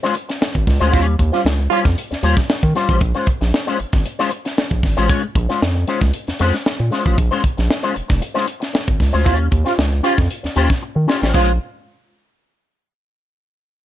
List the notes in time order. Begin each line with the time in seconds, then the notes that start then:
0.03 G#3 C#4 F4 C5, snare, closed hi-hat
0.15 muted clean electric guitar stroke, closed hi-hat
0.29 muted clean electric guitar stroke, snare, closed hi-hat
0.41 muted clean electric guitar stroke, snare
0.55 G#1, muted clean electric guitar stroke, kick, closed hi-hat
0.67 C#2, kick, snare, open hi-hat
0.80 D2 G#3 C#4 F4 C5, closed hi-hat
0.92 D#2 G3 C#4 F4 C#5, kick, closed hi-hat
1.07 muted clean electric guitar stroke, closed hi-hat
1.19 D#2, muted clean electric guitar stroke, kick, closed hi-hat
1.32 G3 C#4 F4 C5, snare, closed hi-hat
1.45 C#2, snare
1.59 muted clean electric guitar stroke, closed hi-hat
1.70 G3 C#4 F4 C5, closed hi-hat
1.85 F2, muted clean electric guitar stroke, kick, snare, closed hi-hat
1.98 closed hi-hat
2.11 D#2, muted clean electric guitar stroke, snare, closed hi-hat
2.23 D#2 G3 C#4 F4 C5, closed hi-hat
2.37 muted clean electric guitar stroke, kick, snare, closed hi-hat
2.49 muted clean electric guitar stroke, snare
2.63 D#3, muted clean electric guitar stroke, kick, closed hi-hat
2.75 G3 C#4 F4 C5, snare, open hi-hat
2.89 A1 G3 C#4 F4 C5, kick, closed hi-hat
3.01 A#1, muted clean electric guitar stroke, kick, closed hi-hat
3.14 G#3 C#4 F4 C5, closed hi-hat
3.27 muted clean electric guitar stroke, kick, closed hi-hat
3.41 A#1, muted clean electric guitar stroke, snare, closed hi-hat
3.53 muted clean electric guitar stroke, snare
3.67 G#3 C#4 F4 C5, closed hi-hat
3.79 G#1, muted clean electric guitar stroke, closed hi-hat
3.93 G#1, muted clean electric guitar stroke, kick, snare, closed hi-hat
4.05 muted clean electric guitar stroke, closed hi-hat
4.19 G#3 C#4 F4 C5, snare, closed hi-hat
4.31 muted clean electric guitar stroke, closed hi-hat
4.45 muted clean electric guitar stroke, snare, closed hi-hat
4.57 muted clean electric guitar stroke, snare
4.71 A#1, muted clean electric guitar stroke, kick, closed hi-hat
4.83 G#1, kick, snare, open hi-hat
4.97 A1 G#3 C#4 F4 C5, closed hi-hat
5.09 G#3 C#4 F4 C#5, kick, closed hi-hat
5.23 muted clean electric guitar stroke, closed hi-hat
5.35 A#1, muted clean electric guitar stroke, kick, closed hi-hat
5.49 G#3 C#4 F4 C5, snare, closed hi-hat
5.62 F2, snare
5.75 muted clean electric guitar stroke, closed hi-hat
5.87 G#3 C#4 F4 C5, closed hi-hat
6.01 C#2, muted clean electric guitar stroke, kick, snare, closed hi-hat
6.14 closed hi-hat
6.27 F2, muted clean electric guitar stroke, snare, closed hi-hat
6.39 F2 G#3 C#4 F4 C5, closed hi-hat
6.54 muted clean electric guitar stroke, snare, closed hi-hat
6.66 muted clean electric guitar stroke, snare
6.79 A#2, muted clean electric guitar stroke, closed hi-hat
6.91 G#3 C#4 F4 C5, snare, open hi-hat
7.05 A1 G#3 C#4 F4 C5, kick, closed hi-hat
7.18 A#1, kick, closed hi-hat
7.31 G#3 C#4 F4 C5, closed hi-hat
7.43 muted clean electric guitar stroke, kick, closed hi-hat
7.57 A#1, muted clean electric guitar stroke, snare, closed hi-hat
7.69 muted clean electric guitar stroke, snare
7.83 G#3 C#4 F4 C5, closed hi-hat
7.95 F1, muted clean electric guitar stroke, closed hi-hat
8.08 F1, muted clean electric guitar stroke, kick, snare, closed hi-hat
8.21 muted clean electric guitar stroke, closed hi-hat
8.34 G#3 C#4 F4 C5, snare, closed hi-hat
8.47 muted clean electric guitar stroke, closed hi-hat
8.60 muted clean electric guitar stroke, snare, closed hi-hat
8.73 muted clean electric guitar stroke, snare
8.87 G#1, muted clean electric guitar stroke, kick, closed hi-hat
9.00 C#2, kick, snare, open hi-hat
9.12 D2 G#3 C#4 F4 C5, closed hi-hat
9.25 D#2 C#4 F4 G4 C#5, kick, closed hi-hat
9.39 muted clean electric guitar stroke, closed hi-hat
9.51 D#2, muted clean electric guitar stroke, kick, closed hi-hat
9.64 C#4 F4 G4 C5, snare, closed hi-hat
9.78 C#2, snare
9.91 muted clean electric guitar stroke, closed hi-hat
10.03 C#4 F4 G4 C5, closed hi-hat
10.17 F2, muted clean electric guitar stroke, kick, snare, closed hi-hat
10.30 closed hi-hat
10.43 D#2, muted clean electric guitar stroke, snare, closed hi-hat
10.56 D#2 C#4 F4 G4 C5, closed hi-hat
10.69 muted clean electric guitar stroke, kick, snare, closed hi-hat
10.82 muted clean electric guitar stroke
10.95 D#3, muted clean electric guitar stroke
11.07 C#4 F4 G4 C5, snare
11.21 A1 C#4 F4 G4 C5, snare
11.33 A#1 G#3 C#4 F4 C5, kick, crash